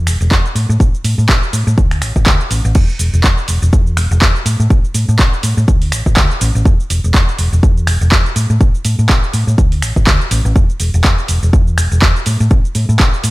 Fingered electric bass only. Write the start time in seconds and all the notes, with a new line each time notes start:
0.07 E1
0.20 E1
0.31 E2
0.55 A2
0.69 A2
0.80 A1
1.04 A2
1.18 A2
1.29 A1
1.53 A2
1.67 A2
1.78 D2
2.02 A1
2.16 A1
2.27 D2
2.51 A1
2.65 A1
2.75 E2
2.99 E1
3.13 E1
3.48 E1
3.62 E1
3.73 E2
3.97 E1
4.11 E1
4.22 E2
4.46 A2
4.60 A2
4.70 A1
4.95 A2
5.09 A2
5.19 A1
5.43 A2
5.57 A2
5.68 D2
5.92 A1
6.06 A1
6.17 D2
6.41 A1
6.55 A1
6.66 E2
6.90 E1
7.04 E1
7.39 E1
7.52 E1
7.63 E2
7.87 E1
8.01 E1
8.36 A2
8.50 A2
8.61 A1
8.85 A2
8.99 A2
9.09 A1
9.34 A2
9.47 A2
9.58 D2
9.82 A1
9.96 A1
10.07 D2
10.31 A1
10.45 A1
10.80 E1
10.94 E1
11.29 E1
11.42 E1
11.53 E2
11.78 E1
11.91 E1
12.02 E2
12.26 A2
12.40 A2
12.51 A1
12.75 A2
12.89 A2
13.00 A1
13.24 A2